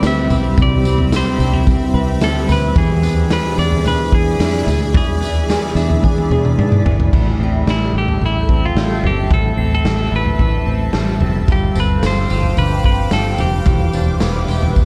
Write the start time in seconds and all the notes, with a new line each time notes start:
Already playing: C3 C4 G4 B4 E5 B5
0.03 D2 G3 C4 E4 B4, snare, tambourine
0.07 E5
0.30 B1 B4, floor tom, tambourine
0.57 C2 C3 E3 G3 C4 E4 B4, kick, floor tom, tambourine
0.62 D5
0.85 C4, tambourine
0.98 floor tom
1.12 C5, snare, tambourine
1.38 C2 D4 G5, tambourine
1.53 E4, floor tom
1.66 G3 C4 E4 B4, kick, floor tom, tambourine
1.94 C2 B4
2.21 D2 G3 C4 E4 A4 E5, snare, tambourine
2.25 B4
2.48 D2 B4, floor tom, tambourine
2.76 E2 E3 G#3 D4 E4 G#4 B4 D5 B5, kick, floor tom, tambourine
3.03 B3 E4 B4, tambourine
3.07 D4
3.30 G#4 B4, snare, tambourine
3.58 E2 D4 D5, tambourine
3.72 floor tom
3.85 G#3 B3 D4 E4 B4, floor tom, tambourine
4.12 E2 G#4, kick
4.39 F2 G#3 D4 E4 B4, snare, tambourine
4.67 D2 G#4, floor tom, tambourine
4.93 E2 E3 G#3 D4 E4 G#4 B4, kick, floor tom, tambourine
5.21 B3 E4, tambourine
5.25 D4
5.48 G#4, snare, tambourine
5.75 E2 D4 E5, tambourine
5.90 floor tom
6.02 G#3 B3 D4 E4 B4 G#5, kick, high tom
6.18 high tom
6.30 E2 G#4, mid tom
6.45 mid tom
6.58 G#2 G#3 D4 E4 B4, mid tom
6.72 mid tom
6.85 G#1 G#4, floor tom
7.00 floor tom
7.12 A1 A2 E4 A4 E5 G5, kick, floor tom, crash
7.39 A1 C4
7.43 G5
7.66 A1 G3, snare
7.70 E4
7.93 A1
7.98 G4
8.08 floor tom
8.21 A1, floor tom
8.26 E4
8.49 A1 C4, kick
8.65 F4
8.75 A1 G3, snare
9.03 G1 C4 G4, floor tom
9.30 A1 A2 E4 A4 A5, kick, floor tom
9.57 A1 C4 C7
9.75 A4
9.84 A1 G3, snare
10.12 A1 E4 B4
10.26 floor tom
10.39 A1 E3, kick, floor tom
10.66 A1 C4
10.93 A1 G3, snare
11.20 F1 C4, floor tom
11.48 G1 G2 F4 G4 C5 F5 G5 D6, kick, floor tom, tambourine
11.75 G1 C4, tambourine
11.80 B4
12.02 G1 F3 C5, snare, tambourine
12.30 G1 F4, tambourine
12.43 floor tom
12.57 G1 D3 B4, floor tom, tambourine
12.84 G1 C4 B4, kick
13.11 G1 F3 A4 A5, snare, tambourine
13.38 F1 C4 G4 G5, floor tom, tambourine
13.66 E1 E3 G4 B4 E5 G5, kick, floor tom, tambourine
13.93 E1 D4, tambourine
14.20 E1 B3 B5, snare, tambourine
14.48 E1 G4, tambourine
14.62 floor tom
14.76 E1 B3, kick, floor tom, tambourine